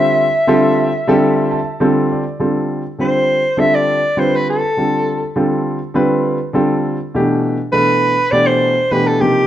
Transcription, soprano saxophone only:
X:1
M:4/4
L:1/16
Q:"Swing 16ths" 1/4=101
K:Flyd
V:1 name="Soprano saxophone"
e12 z4 | z4 c4 e d3 c B A2- | A4 z12 | z4 B4 d c3 B A G2 |]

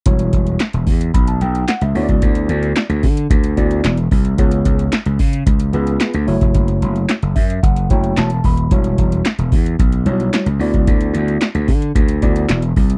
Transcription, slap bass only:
X:1
M:4/4
L:1/16
Q:1/4=111
K:Edor
V:1 name="Slap bass" clef=bass
E,,,2 E,,,2 z E,,, E,,2 B,,,2 B,,,2 z C,, D,, C,, | D,,2 D,,2 z D,, D,2 D,,2 D,,2 E,,,2 =C,,2 | C,,2 C,,2 z C,, C,2 C,,2 C,,2 z D,, F,,, =F,,, | F,,,2 F,,,2 z F,,, F,,2 F,,,2 F,,,2 E,,,2 ^D,,,2 |
E,,,2 E,,,2 z E,,, E,,2 B,,,2 B,,,2 z C,, D,, C,, | D,,2 D,,2 z D,, D,2 D,,2 D,,2 E,,,2 =C,,2 |]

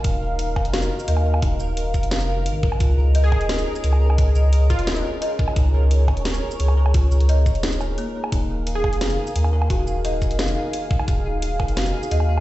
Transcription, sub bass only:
X:1
M:4/4
L:1/8
Q:1/4=174
K:Dbmix
V:1 name="Sub bass" clef=bass
E,,,3 F,,,2 z E,,2 | E,,,3 F,,,3 A,,,2 | D,,3 E,,,2 z D,,2 | D,,3 E,,,2 z3 |
D,,3 E,,,2 z D,,2 | D,,3 E,,,3 z2 | E,,,3 F,,,2 z E,,2 | E,,,3 F,,,2 z3 |
E,,,3 F,,,2 z E,,2 |]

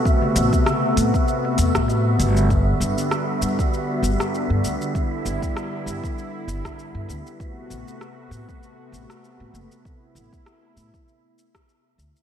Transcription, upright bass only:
X:1
M:4/4
L:1/16
Q:"Swing 16ths" 1/4=98
K:Ador
V:1 name="Upright bass" clef=bass
z2 A,,, z3 A,, z3 E,, A,,3 G,,,2- | G,,,2 G,,, z3 G,, z3 G,,, z2 G,, D,, z | z2 G,,, z3 G,, z3 G,,, z2 G,, D,, z | z2 A,,, z3 A,, z3 A,,, z2 A,, F,,, z |
z2 A,,, z3 A,, z6 z D,, z |]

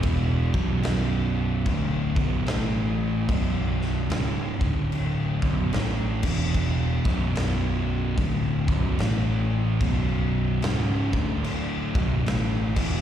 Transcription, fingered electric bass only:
X:1
M:4/4
L:1/8
Q:"Swing" 1/4=74
K:Bm
V:1 name="Fingered electric bass" clef=bass
E,,, B,,,,3 D,,, B,,,, A,,,2 | B,,,,2 C,,, D,,,2 B,,,, A,,, E,,,- | E,,, B,,,,3 D,,, B,,,, A,,,2 | B,,,,2 C,,, D,,,2 B,,,, A,,, E,,, |]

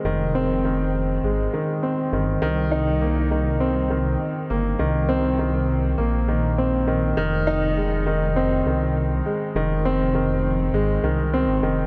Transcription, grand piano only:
X:1
M:4/4
L:1/8
Q:1/4=101
K:Fm
V:1 name="Grand piano" clef=bass
E, C E, z A, E, C E, | E, E B, E, C E, z B, | E, C E, z B, E, C E, | E, E A, E, C E, z A, |
E, C E, z A, E, C E, |]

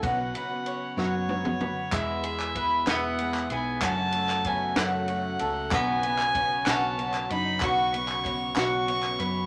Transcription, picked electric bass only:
X:1
M:6/8
L:1/8
Q:3/8=63
K:E
V:1 name="Picked electric bass" clef=bass
B,,, z2 F,,3 | E,,3 E,,2 B,,, | F,,3 F,,2 C,, | B,,,3 B,,,2 F,, |
B,,,3 B,,,2 F,, |]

